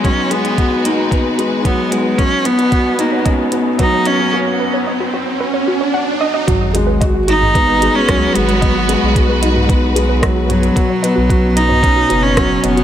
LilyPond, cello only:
\new Staff \with { instrumentName = "Cello" } { \time 4/4 \key gis \minor \tempo 4 = 112 cis'8 b4 ais8 r4 b8 gis8 | cis'8 b4 ais8 r4 dis'8 cis'8 | r1 | r4. dis'4~ dis'16 cis'8. b8~ |
b4. r2 fis8~ | fis4. dis'4~ dis'16 cis'8. b8 | }